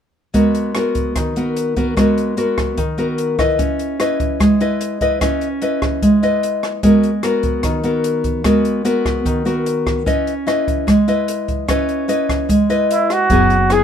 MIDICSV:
0, 0, Header, 1, 5, 480
1, 0, Start_track
1, 0, Key_signature, 5, "minor"
1, 0, Tempo, 404858
1, 409, Time_signature, 4, 2, 24, 8
1, 16405, End_track
2, 0, Start_track
2, 0, Title_t, "Flugelhorn"
2, 0, Program_c, 0, 56
2, 15316, Note_on_c, 0, 64, 67
2, 15561, Note_on_c, 0, 66, 77
2, 15579, Note_off_c, 0, 64, 0
2, 16281, Note_on_c, 0, 68, 67
2, 16298, Note_off_c, 0, 66, 0
2, 16405, Note_off_c, 0, 68, 0
2, 16405, End_track
3, 0, Start_track
3, 0, Title_t, "Nylon-string guitar"
3, 0, Program_c, 1, 24
3, 400, Note_on_c, 1, 56, 52
3, 402, Note_on_c, 1, 59, 42
3, 408, Note_on_c, 1, 66, 41
3, 408, Note_on_c, 1, 70, 46
3, 848, Note_off_c, 1, 59, 0
3, 849, Note_off_c, 1, 66, 0
3, 852, Note_off_c, 1, 70, 0
3, 890, Note_on_c, 1, 59, 43
3, 898, Note_on_c, 1, 66, 45
3, 902, Note_on_c, 1, 70, 49
3, 1344, Note_off_c, 1, 56, 0
3, 1374, Note_on_c, 1, 51, 51
3, 1575, Note_off_c, 1, 59, 0
3, 1577, Note_off_c, 1, 66, 0
3, 1580, Note_off_c, 1, 70, 0
3, 1621, Note_on_c, 1, 59, 47
3, 1628, Note_on_c, 1, 66, 44
3, 1631, Note_on_c, 1, 70, 43
3, 2059, Note_off_c, 1, 59, 0
3, 2063, Note_off_c, 1, 66, 0
3, 2064, Note_off_c, 1, 70, 0
3, 2094, Note_on_c, 1, 59, 45
3, 2101, Note_on_c, 1, 66, 50
3, 2106, Note_on_c, 1, 70, 54
3, 2296, Note_off_c, 1, 59, 0
3, 2300, Note_off_c, 1, 66, 0
3, 2301, Note_off_c, 1, 70, 0
3, 2311, Note_off_c, 1, 51, 0
3, 2331, Note_on_c, 1, 56, 54
3, 2331, Note_on_c, 1, 59, 47
3, 2333, Note_on_c, 1, 66, 44
3, 2342, Note_on_c, 1, 70, 51
3, 2774, Note_off_c, 1, 59, 0
3, 2777, Note_off_c, 1, 66, 0
3, 2779, Note_off_c, 1, 70, 0
3, 2809, Note_on_c, 1, 59, 43
3, 2819, Note_on_c, 1, 70, 53
3, 2820, Note_on_c, 1, 66, 47
3, 3271, Note_off_c, 1, 56, 0
3, 3291, Note_off_c, 1, 59, 0
3, 3292, Note_on_c, 1, 51, 56
3, 3293, Note_off_c, 1, 66, 0
3, 3295, Note_off_c, 1, 70, 0
3, 3530, Note_on_c, 1, 59, 45
3, 3537, Note_on_c, 1, 66, 51
3, 3542, Note_on_c, 1, 70, 51
3, 3976, Note_off_c, 1, 59, 0
3, 3979, Note_off_c, 1, 66, 0
3, 3982, Note_off_c, 1, 70, 0
3, 4013, Note_on_c, 1, 64, 52
3, 4017, Note_on_c, 1, 71, 46
3, 4022, Note_on_c, 1, 75, 53
3, 4232, Note_off_c, 1, 51, 0
3, 4253, Note_on_c, 1, 61, 51
3, 4698, Note_off_c, 1, 64, 0
3, 4701, Note_off_c, 1, 71, 0
3, 4702, Note_off_c, 1, 75, 0
3, 4737, Note_on_c, 1, 64, 49
3, 4742, Note_on_c, 1, 71, 48
3, 4750, Note_on_c, 1, 75, 49
3, 5193, Note_off_c, 1, 61, 0
3, 5215, Note_on_c, 1, 56, 54
3, 5420, Note_off_c, 1, 64, 0
3, 5423, Note_off_c, 1, 71, 0
3, 5427, Note_off_c, 1, 75, 0
3, 5463, Note_on_c, 1, 64, 48
3, 5470, Note_on_c, 1, 71, 54
3, 5470, Note_on_c, 1, 75, 56
3, 5904, Note_off_c, 1, 64, 0
3, 5906, Note_off_c, 1, 71, 0
3, 5907, Note_off_c, 1, 75, 0
3, 5942, Note_on_c, 1, 64, 45
3, 5949, Note_on_c, 1, 71, 46
3, 5951, Note_on_c, 1, 75, 56
3, 6143, Note_off_c, 1, 64, 0
3, 6145, Note_off_c, 1, 71, 0
3, 6147, Note_off_c, 1, 75, 0
3, 6154, Note_off_c, 1, 56, 0
3, 6177, Note_on_c, 1, 61, 57
3, 6181, Note_on_c, 1, 64, 41
3, 6188, Note_on_c, 1, 71, 46
3, 6188, Note_on_c, 1, 75, 45
3, 6489, Note_off_c, 1, 64, 0
3, 6490, Note_off_c, 1, 71, 0
3, 6493, Note_off_c, 1, 75, 0
3, 6659, Note_on_c, 1, 64, 43
3, 6665, Note_on_c, 1, 71, 45
3, 6667, Note_on_c, 1, 75, 55
3, 7116, Note_off_c, 1, 61, 0
3, 7142, Note_on_c, 1, 56, 50
3, 7342, Note_off_c, 1, 64, 0
3, 7344, Note_off_c, 1, 71, 0
3, 7346, Note_off_c, 1, 75, 0
3, 7381, Note_on_c, 1, 64, 42
3, 7388, Note_on_c, 1, 71, 47
3, 7392, Note_on_c, 1, 75, 55
3, 8062, Note_off_c, 1, 64, 0
3, 8065, Note_off_c, 1, 71, 0
3, 8068, Note_off_c, 1, 75, 0
3, 8077, Note_off_c, 1, 56, 0
3, 8099, Note_on_c, 1, 56, 59
3, 8101, Note_on_c, 1, 59, 41
3, 8109, Note_on_c, 1, 66, 45
3, 8111, Note_on_c, 1, 70, 53
3, 8409, Note_off_c, 1, 59, 0
3, 8411, Note_off_c, 1, 66, 0
3, 8415, Note_off_c, 1, 70, 0
3, 8572, Note_on_c, 1, 59, 47
3, 8579, Note_on_c, 1, 66, 42
3, 8584, Note_on_c, 1, 70, 54
3, 9036, Note_off_c, 1, 56, 0
3, 9055, Note_on_c, 1, 51, 52
3, 9257, Note_off_c, 1, 59, 0
3, 9262, Note_off_c, 1, 66, 0
3, 9262, Note_off_c, 1, 70, 0
3, 9292, Note_on_c, 1, 59, 44
3, 9301, Note_on_c, 1, 66, 51
3, 9306, Note_on_c, 1, 70, 50
3, 9977, Note_off_c, 1, 59, 0
3, 9982, Note_off_c, 1, 66, 0
3, 9983, Note_off_c, 1, 70, 0
3, 9992, Note_off_c, 1, 51, 0
3, 10011, Note_on_c, 1, 56, 55
3, 10014, Note_on_c, 1, 59, 49
3, 10016, Note_on_c, 1, 66, 46
3, 10026, Note_on_c, 1, 70, 44
3, 10456, Note_off_c, 1, 59, 0
3, 10460, Note_off_c, 1, 66, 0
3, 10461, Note_off_c, 1, 70, 0
3, 10488, Note_on_c, 1, 59, 54
3, 10493, Note_on_c, 1, 66, 49
3, 10498, Note_on_c, 1, 70, 52
3, 10950, Note_off_c, 1, 56, 0
3, 10972, Note_on_c, 1, 51, 55
3, 11174, Note_off_c, 1, 59, 0
3, 11177, Note_off_c, 1, 66, 0
3, 11177, Note_off_c, 1, 70, 0
3, 11207, Note_on_c, 1, 59, 49
3, 11213, Note_on_c, 1, 66, 50
3, 11219, Note_on_c, 1, 70, 50
3, 11892, Note_off_c, 1, 59, 0
3, 11895, Note_off_c, 1, 66, 0
3, 11898, Note_off_c, 1, 70, 0
3, 11909, Note_off_c, 1, 51, 0
3, 11929, Note_on_c, 1, 61, 55
3, 11930, Note_on_c, 1, 64, 42
3, 11932, Note_on_c, 1, 71, 50
3, 11942, Note_on_c, 1, 75, 49
3, 12240, Note_off_c, 1, 64, 0
3, 12243, Note_off_c, 1, 71, 0
3, 12245, Note_off_c, 1, 75, 0
3, 12408, Note_on_c, 1, 64, 50
3, 12416, Note_on_c, 1, 71, 49
3, 12417, Note_on_c, 1, 75, 54
3, 12867, Note_off_c, 1, 61, 0
3, 12888, Note_off_c, 1, 64, 0
3, 12888, Note_on_c, 1, 56, 53
3, 12890, Note_off_c, 1, 71, 0
3, 12892, Note_off_c, 1, 75, 0
3, 13133, Note_on_c, 1, 64, 53
3, 13138, Note_on_c, 1, 71, 47
3, 13145, Note_on_c, 1, 75, 55
3, 13813, Note_off_c, 1, 64, 0
3, 13816, Note_off_c, 1, 71, 0
3, 13817, Note_off_c, 1, 75, 0
3, 13824, Note_off_c, 1, 56, 0
3, 13850, Note_on_c, 1, 61, 57
3, 13854, Note_on_c, 1, 64, 45
3, 13862, Note_on_c, 1, 75, 45
3, 13863, Note_on_c, 1, 71, 47
3, 14292, Note_off_c, 1, 64, 0
3, 14294, Note_off_c, 1, 71, 0
3, 14297, Note_off_c, 1, 75, 0
3, 14322, Note_on_c, 1, 64, 44
3, 14330, Note_on_c, 1, 71, 53
3, 14335, Note_on_c, 1, 75, 54
3, 14785, Note_off_c, 1, 61, 0
3, 14802, Note_off_c, 1, 64, 0
3, 14806, Note_off_c, 1, 71, 0
3, 14807, Note_off_c, 1, 75, 0
3, 14807, Note_on_c, 1, 56, 53
3, 15052, Note_on_c, 1, 64, 49
3, 15056, Note_on_c, 1, 71, 53
3, 15058, Note_on_c, 1, 75, 60
3, 15729, Note_off_c, 1, 64, 0
3, 15730, Note_off_c, 1, 71, 0
3, 15732, Note_off_c, 1, 75, 0
3, 15741, Note_off_c, 1, 56, 0
3, 15771, Note_on_c, 1, 54, 50
3, 15778, Note_on_c, 1, 59, 49
3, 15780, Note_on_c, 1, 64, 43
3, 15786, Note_on_c, 1, 68, 52
3, 16078, Note_off_c, 1, 59, 0
3, 16081, Note_off_c, 1, 64, 0
3, 16083, Note_off_c, 1, 68, 0
3, 16247, Note_on_c, 1, 59, 53
3, 16254, Note_on_c, 1, 64, 49
3, 16255, Note_on_c, 1, 68, 59
3, 16386, Note_off_c, 1, 59, 0
3, 16389, Note_off_c, 1, 64, 0
3, 16390, Note_off_c, 1, 68, 0
3, 16405, Note_off_c, 1, 54, 0
3, 16405, End_track
4, 0, Start_track
4, 0, Title_t, "Upright bass"
4, 0, Program_c, 2, 32
4, 15765, Note_on_c, 2, 30, 76
4, 16405, Note_off_c, 2, 30, 0
4, 16405, End_track
5, 0, Start_track
5, 0, Title_t, "Drums"
5, 405, Note_on_c, 9, 42, 36
5, 407, Note_on_c, 9, 36, 48
5, 524, Note_off_c, 9, 42, 0
5, 526, Note_off_c, 9, 36, 0
5, 647, Note_on_c, 9, 42, 23
5, 766, Note_off_c, 9, 42, 0
5, 885, Note_on_c, 9, 37, 51
5, 885, Note_on_c, 9, 42, 32
5, 1003, Note_off_c, 9, 37, 0
5, 1003, Note_off_c, 9, 42, 0
5, 1125, Note_on_c, 9, 42, 26
5, 1131, Note_on_c, 9, 36, 49
5, 1244, Note_off_c, 9, 42, 0
5, 1249, Note_off_c, 9, 36, 0
5, 1371, Note_on_c, 9, 37, 45
5, 1371, Note_on_c, 9, 42, 39
5, 1373, Note_on_c, 9, 36, 45
5, 1489, Note_off_c, 9, 37, 0
5, 1489, Note_off_c, 9, 42, 0
5, 1492, Note_off_c, 9, 36, 0
5, 1614, Note_on_c, 9, 42, 23
5, 1733, Note_off_c, 9, 42, 0
5, 1856, Note_on_c, 9, 42, 41
5, 1974, Note_off_c, 9, 42, 0
5, 2093, Note_on_c, 9, 42, 23
5, 2095, Note_on_c, 9, 36, 44
5, 2211, Note_off_c, 9, 42, 0
5, 2214, Note_off_c, 9, 36, 0
5, 2336, Note_on_c, 9, 36, 47
5, 2339, Note_on_c, 9, 37, 50
5, 2339, Note_on_c, 9, 42, 35
5, 2455, Note_off_c, 9, 36, 0
5, 2458, Note_off_c, 9, 37, 0
5, 2458, Note_off_c, 9, 42, 0
5, 2581, Note_on_c, 9, 42, 24
5, 2699, Note_off_c, 9, 42, 0
5, 2814, Note_on_c, 9, 42, 30
5, 2933, Note_off_c, 9, 42, 0
5, 3055, Note_on_c, 9, 37, 54
5, 3055, Note_on_c, 9, 42, 24
5, 3056, Note_on_c, 9, 36, 46
5, 3174, Note_off_c, 9, 37, 0
5, 3174, Note_off_c, 9, 42, 0
5, 3175, Note_off_c, 9, 36, 0
5, 3291, Note_on_c, 9, 42, 33
5, 3294, Note_on_c, 9, 36, 48
5, 3409, Note_off_c, 9, 42, 0
5, 3413, Note_off_c, 9, 36, 0
5, 3536, Note_on_c, 9, 42, 19
5, 3655, Note_off_c, 9, 42, 0
5, 3773, Note_on_c, 9, 42, 36
5, 3891, Note_off_c, 9, 42, 0
5, 4016, Note_on_c, 9, 36, 50
5, 4018, Note_on_c, 9, 37, 51
5, 4018, Note_on_c, 9, 42, 24
5, 4135, Note_off_c, 9, 36, 0
5, 4136, Note_off_c, 9, 37, 0
5, 4136, Note_off_c, 9, 42, 0
5, 4256, Note_on_c, 9, 36, 52
5, 4257, Note_on_c, 9, 42, 35
5, 4375, Note_off_c, 9, 36, 0
5, 4375, Note_off_c, 9, 42, 0
5, 4498, Note_on_c, 9, 42, 23
5, 4616, Note_off_c, 9, 42, 0
5, 4739, Note_on_c, 9, 37, 49
5, 4739, Note_on_c, 9, 42, 33
5, 4857, Note_off_c, 9, 37, 0
5, 4857, Note_off_c, 9, 42, 0
5, 4979, Note_on_c, 9, 36, 50
5, 4980, Note_on_c, 9, 42, 25
5, 5097, Note_off_c, 9, 36, 0
5, 5098, Note_off_c, 9, 42, 0
5, 5219, Note_on_c, 9, 36, 50
5, 5223, Note_on_c, 9, 37, 52
5, 5223, Note_on_c, 9, 42, 38
5, 5337, Note_off_c, 9, 36, 0
5, 5341, Note_off_c, 9, 37, 0
5, 5341, Note_off_c, 9, 42, 0
5, 5460, Note_on_c, 9, 42, 22
5, 5578, Note_off_c, 9, 42, 0
5, 5700, Note_on_c, 9, 42, 40
5, 5818, Note_off_c, 9, 42, 0
5, 5940, Note_on_c, 9, 36, 42
5, 5940, Note_on_c, 9, 42, 27
5, 6058, Note_off_c, 9, 36, 0
5, 6059, Note_off_c, 9, 42, 0
5, 6179, Note_on_c, 9, 36, 51
5, 6180, Note_on_c, 9, 37, 51
5, 6180, Note_on_c, 9, 42, 42
5, 6298, Note_off_c, 9, 36, 0
5, 6299, Note_off_c, 9, 37, 0
5, 6299, Note_off_c, 9, 42, 0
5, 6418, Note_on_c, 9, 42, 23
5, 6536, Note_off_c, 9, 42, 0
5, 6659, Note_on_c, 9, 42, 31
5, 6777, Note_off_c, 9, 42, 0
5, 6900, Note_on_c, 9, 37, 53
5, 6900, Note_on_c, 9, 42, 21
5, 6901, Note_on_c, 9, 36, 46
5, 7019, Note_off_c, 9, 36, 0
5, 7019, Note_off_c, 9, 37, 0
5, 7019, Note_off_c, 9, 42, 0
5, 7141, Note_on_c, 9, 36, 43
5, 7144, Note_on_c, 9, 42, 37
5, 7260, Note_off_c, 9, 36, 0
5, 7263, Note_off_c, 9, 42, 0
5, 7387, Note_on_c, 9, 42, 22
5, 7506, Note_off_c, 9, 42, 0
5, 7627, Note_on_c, 9, 42, 36
5, 7745, Note_off_c, 9, 42, 0
5, 7863, Note_on_c, 9, 37, 49
5, 7863, Note_on_c, 9, 42, 22
5, 7982, Note_off_c, 9, 37, 0
5, 7982, Note_off_c, 9, 42, 0
5, 8100, Note_on_c, 9, 36, 47
5, 8100, Note_on_c, 9, 42, 39
5, 8219, Note_off_c, 9, 36, 0
5, 8219, Note_off_c, 9, 42, 0
5, 8340, Note_on_c, 9, 42, 22
5, 8458, Note_off_c, 9, 42, 0
5, 8573, Note_on_c, 9, 37, 48
5, 8573, Note_on_c, 9, 42, 30
5, 8692, Note_off_c, 9, 37, 0
5, 8692, Note_off_c, 9, 42, 0
5, 8809, Note_on_c, 9, 42, 23
5, 8815, Note_on_c, 9, 36, 52
5, 8928, Note_off_c, 9, 42, 0
5, 8934, Note_off_c, 9, 36, 0
5, 9048, Note_on_c, 9, 37, 48
5, 9048, Note_on_c, 9, 42, 39
5, 9054, Note_on_c, 9, 36, 49
5, 9166, Note_off_c, 9, 37, 0
5, 9166, Note_off_c, 9, 42, 0
5, 9172, Note_off_c, 9, 36, 0
5, 9290, Note_on_c, 9, 42, 25
5, 9409, Note_off_c, 9, 42, 0
5, 9533, Note_on_c, 9, 42, 39
5, 9652, Note_off_c, 9, 42, 0
5, 9771, Note_on_c, 9, 42, 27
5, 9774, Note_on_c, 9, 36, 46
5, 9889, Note_off_c, 9, 42, 0
5, 9893, Note_off_c, 9, 36, 0
5, 10012, Note_on_c, 9, 37, 52
5, 10012, Note_on_c, 9, 42, 43
5, 10013, Note_on_c, 9, 36, 47
5, 10130, Note_off_c, 9, 37, 0
5, 10130, Note_off_c, 9, 42, 0
5, 10132, Note_off_c, 9, 36, 0
5, 10255, Note_on_c, 9, 42, 23
5, 10373, Note_off_c, 9, 42, 0
5, 10495, Note_on_c, 9, 42, 34
5, 10614, Note_off_c, 9, 42, 0
5, 10735, Note_on_c, 9, 36, 47
5, 10738, Note_on_c, 9, 37, 47
5, 10738, Note_on_c, 9, 42, 26
5, 10853, Note_off_c, 9, 36, 0
5, 10857, Note_off_c, 9, 37, 0
5, 10857, Note_off_c, 9, 42, 0
5, 10974, Note_on_c, 9, 36, 52
5, 10979, Note_on_c, 9, 42, 33
5, 11093, Note_off_c, 9, 36, 0
5, 11097, Note_off_c, 9, 42, 0
5, 11221, Note_on_c, 9, 42, 23
5, 11340, Note_off_c, 9, 42, 0
5, 11457, Note_on_c, 9, 42, 35
5, 11576, Note_off_c, 9, 42, 0
5, 11695, Note_on_c, 9, 36, 47
5, 11697, Note_on_c, 9, 37, 50
5, 11697, Note_on_c, 9, 42, 21
5, 11814, Note_off_c, 9, 36, 0
5, 11816, Note_off_c, 9, 37, 0
5, 11816, Note_off_c, 9, 42, 0
5, 11937, Note_on_c, 9, 36, 53
5, 11942, Note_on_c, 9, 42, 35
5, 12056, Note_off_c, 9, 36, 0
5, 12061, Note_off_c, 9, 42, 0
5, 12180, Note_on_c, 9, 42, 21
5, 12298, Note_off_c, 9, 42, 0
5, 12423, Note_on_c, 9, 37, 45
5, 12423, Note_on_c, 9, 42, 30
5, 12542, Note_off_c, 9, 37, 0
5, 12542, Note_off_c, 9, 42, 0
5, 12658, Note_on_c, 9, 36, 48
5, 12663, Note_on_c, 9, 42, 26
5, 12777, Note_off_c, 9, 36, 0
5, 12781, Note_off_c, 9, 42, 0
5, 12898, Note_on_c, 9, 36, 47
5, 12898, Note_on_c, 9, 37, 48
5, 12898, Note_on_c, 9, 42, 38
5, 13017, Note_off_c, 9, 36, 0
5, 13017, Note_off_c, 9, 37, 0
5, 13017, Note_off_c, 9, 42, 0
5, 13138, Note_on_c, 9, 42, 22
5, 13256, Note_off_c, 9, 42, 0
5, 13376, Note_on_c, 9, 42, 41
5, 13495, Note_off_c, 9, 42, 0
5, 13615, Note_on_c, 9, 42, 23
5, 13617, Note_on_c, 9, 36, 44
5, 13734, Note_off_c, 9, 42, 0
5, 13735, Note_off_c, 9, 36, 0
5, 13854, Note_on_c, 9, 37, 55
5, 13854, Note_on_c, 9, 42, 40
5, 13856, Note_on_c, 9, 36, 50
5, 13973, Note_off_c, 9, 37, 0
5, 13973, Note_off_c, 9, 42, 0
5, 13974, Note_off_c, 9, 36, 0
5, 14094, Note_on_c, 9, 42, 23
5, 14212, Note_off_c, 9, 42, 0
5, 14335, Note_on_c, 9, 42, 39
5, 14453, Note_off_c, 9, 42, 0
5, 14574, Note_on_c, 9, 36, 48
5, 14577, Note_on_c, 9, 37, 51
5, 14577, Note_on_c, 9, 42, 25
5, 14692, Note_off_c, 9, 36, 0
5, 14696, Note_off_c, 9, 37, 0
5, 14696, Note_off_c, 9, 42, 0
5, 14814, Note_on_c, 9, 36, 47
5, 14816, Note_on_c, 9, 42, 41
5, 14932, Note_off_c, 9, 36, 0
5, 14935, Note_off_c, 9, 42, 0
5, 15059, Note_on_c, 9, 42, 22
5, 15177, Note_off_c, 9, 42, 0
5, 15302, Note_on_c, 9, 42, 41
5, 15420, Note_off_c, 9, 42, 0
5, 15533, Note_on_c, 9, 37, 45
5, 15533, Note_on_c, 9, 42, 23
5, 15651, Note_off_c, 9, 37, 0
5, 15651, Note_off_c, 9, 42, 0
5, 15767, Note_on_c, 9, 36, 56
5, 15767, Note_on_c, 9, 42, 35
5, 15885, Note_off_c, 9, 42, 0
5, 15886, Note_off_c, 9, 36, 0
5, 16008, Note_on_c, 9, 42, 22
5, 16127, Note_off_c, 9, 42, 0
5, 16243, Note_on_c, 9, 37, 48
5, 16243, Note_on_c, 9, 42, 34
5, 16361, Note_off_c, 9, 37, 0
5, 16361, Note_off_c, 9, 42, 0
5, 16405, End_track
0, 0, End_of_file